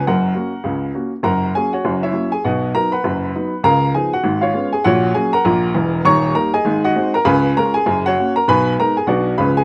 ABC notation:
X:1
M:4/4
L:1/8
Q:"Swing" 1/4=199
K:F#
V:1 name="Upright piano"
[Af]6 z2 | [Afa]2 [Gg] [Fcf]2 [=Ec=e]2 [Gg] | [Fdf]2 [Aa] [Bfb]4- [Bfb] | [Aea]2 [Gg] [Ff]2 [Ece]2 [Gg] |
[Fcf]2 [Gg] [Afa]4- [Afa] | [cac']2 [Aa] [Gdg]2 [Fdf]2 [Aa] | [Bgb]2 [Aa] [Gg]2 [Fcf]2 [Aa] | [Bgb]2 [Aa] [Gg] [F=df]2 [Bb] [Gg] |]
V:2 name="Upright piano" clef=bass
[F,,,F,,]2 [A,CF]2 [C,,C,]2 [A,CF]2 | [F,,,F,,]2 [F,A,C]2 [F,,,F,,]2 [F,A,C]2 | [B,,,B,,]2 [F,B,D]2 [F,,,F,,]2 [F,B,D]2 | [C,,C,]2 [E,B,D]2 [G,,,G,,]2 [G,B,C]2 |
[A,,,A,,]2 [F,A,C]2 [A,,,A,,]2 [=E,,,=E,,]2 | [D,,,D,,]2 [=G,A,D]2 [^G,,,G,,]2 [^G,^B,D]2 | [C,,C,]2 [G,CE]2 [F,,,F,,]2 [A,CF]2 | [B,,,B,,]2 [G,B,D]2 [B,,,B,,F,B,=D]2 [C,,C,E,G,C]2 |]